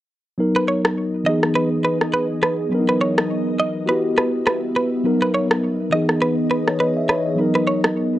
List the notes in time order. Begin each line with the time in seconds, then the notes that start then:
0.38 F#3 B3 D#4 A#4 D#5
0.56 B4
0.68 C#5
0.85 cross-stick
1.24 E3 B3 D#4 G#4 D#5
1.29 G#4
1.43 cross-stick
1.55 B4
1.85 B4
2.01 cross-stick
2.14 B4
2.43 B4, cross-stick
2.69 F#3 B3 D4 A#4 D#5
2.74 A#4
2.79 D#4
2.89 B4
3.01 C#5
3.18 cross-stick
3.60 D#5
3.86 G3 B3 E4 F#4 B4 E5
3.91 G4
4.18 B4, cross-stick
4.47 B4, cross-stick
4.76 B4
5.04 F#3 B3 D#4 A#4 D#5
5.22 B4
5.34 C#5
5.51 cross-stick
5.90 E3 B3 D#4 G#4 D#5
5.95 G#4
6.09 cross-stick
6.22 B4
6.51 B4
6.67 C#5, cross-stick
6.80 B4 D#5
6.97 E5
7.09 B4 C#5, cross-stick
7.26 D#5
7.36 F#3 B3 D#4 A#4
7.41 A#4
7.55 B4
7.67 C#5
7.84 cross-stick